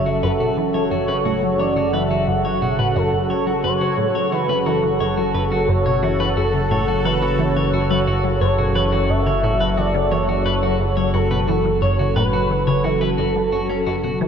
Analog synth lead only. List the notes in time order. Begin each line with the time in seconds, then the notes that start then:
Already playing: E5
0.22 A4
0.90 C#5
1.59 D5
1.93 E5
2.27 F#5
2.95 A4
3.63 C#5
4.32 B4
4.66 A4
5.68 C#5
6.36 A4
7.04 B4
7.38 C#5
8.41 C#5
9.09 E5
9.77 D5
10.11 C#5
11.14 A4
11.82 C#5
12.16 B4
12.84 A4